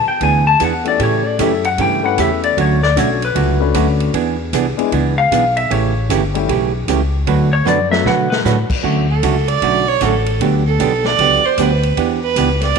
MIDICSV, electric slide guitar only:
0, 0, Header, 1, 2, 480
1, 0, Start_track
1, 0, Key_signature, 2, "major"
1, 0, Tempo, 391901
1, 1224, Time_signature, 4, 2, 24, 8
1, 15663, End_track
2, 0, Start_track
2, 0, Title_t, "Electric slide guitar"
2, 0, Program_c, 0, 29
2, 98, Note_on_c, 0, 79, 92
2, 261, Note_off_c, 0, 79, 0
2, 285, Note_on_c, 0, 80, 89
2, 572, Note_off_c, 0, 80, 0
2, 577, Note_on_c, 0, 81, 105
2, 741, Note_off_c, 0, 81, 0
2, 779, Note_on_c, 0, 78, 84
2, 1061, Note_off_c, 0, 78, 0
2, 1074, Note_on_c, 0, 74, 88
2, 1230, Note_off_c, 0, 74, 0
2, 1264, Note_on_c, 0, 73, 82
2, 1547, Note_off_c, 0, 73, 0
2, 1547, Note_on_c, 0, 74, 84
2, 1747, Note_off_c, 0, 74, 0
2, 1747, Note_on_c, 0, 76, 84
2, 2026, Note_off_c, 0, 76, 0
2, 2026, Note_on_c, 0, 78, 85
2, 2186, Note_off_c, 0, 78, 0
2, 2224, Note_on_c, 0, 79, 90
2, 2504, Note_off_c, 0, 79, 0
2, 2519, Note_on_c, 0, 78, 90
2, 2673, Note_off_c, 0, 78, 0
2, 2697, Note_on_c, 0, 76, 76
2, 2981, Note_off_c, 0, 76, 0
2, 2991, Note_on_c, 0, 74, 75
2, 3149, Note_off_c, 0, 74, 0
2, 3197, Note_on_c, 0, 73, 65
2, 3466, Note_off_c, 0, 73, 0
2, 3471, Note_on_c, 0, 74, 102
2, 3630, Note_off_c, 0, 74, 0
2, 3673, Note_on_c, 0, 73, 71
2, 3950, Note_off_c, 0, 73, 0
2, 3977, Note_on_c, 0, 71, 81
2, 4563, Note_off_c, 0, 71, 0
2, 6345, Note_on_c, 0, 77, 85
2, 6787, Note_off_c, 0, 77, 0
2, 6818, Note_on_c, 0, 76, 88
2, 6983, Note_off_c, 0, 76, 0
2, 7002, Note_on_c, 0, 73, 78
2, 7441, Note_off_c, 0, 73, 0
2, 9223, Note_on_c, 0, 73, 82
2, 9384, Note_off_c, 0, 73, 0
2, 9411, Note_on_c, 0, 74, 80
2, 9689, Note_off_c, 0, 74, 0
2, 9694, Note_on_c, 0, 76, 96
2, 9860, Note_off_c, 0, 76, 0
2, 9888, Note_on_c, 0, 78, 93
2, 10167, Note_on_c, 0, 71, 91
2, 10175, Note_off_c, 0, 78, 0
2, 10271, Note_off_c, 0, 71, 0
2, 15663, End_track
0, 0, End_of_file